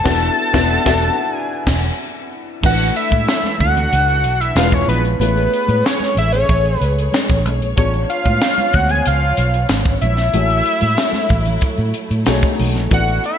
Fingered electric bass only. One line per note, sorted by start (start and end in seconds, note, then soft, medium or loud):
0.06 0.28 E1 loud
0.54 0.76 E1 medium
0.86 1.08 E1 loud
1.67 1.89 E1 loud
2.63 2.90 A1 loud
3.12 3.25 A2 medium
3.60 3.86 D2 medium
3.92 4.24 C#2 medium
4.24 4.51 B1 medium
4.55 4.82 E1 medium
4.88 5.14 A#1 medium
5.20 5.46 A1 loud
5.68 5.82 A2 medium
6.17 6.43 A1 loud
6.49 6.75 A1 loud
6.81 7.07 C#2 medium
7.29 7.45 A1 medium
7.45 7.61 B1 medium
7.61 7.74 A#1 medium
7.78 8.04 A1 loud
8.26 8.39 A2 medium
8.74 9.00 D2 medium
9.07 9.33 C#2 medium
9.38 9.64 B1 loud
9.70 9.96 G#1 medium
10.02 10.28 A#1 medium
10.34 10.60 A1 loud
10.82 10.95 A2 medium
11.30 11.57 A1 medium
11.78 11.92 A2 loud
12.11 12.24 A2 medium
12.27 12.40 B1 loud
12.59 12.76 B1 medium
12.76 12.89 A#1 loud
12.91 13.18 A1 loud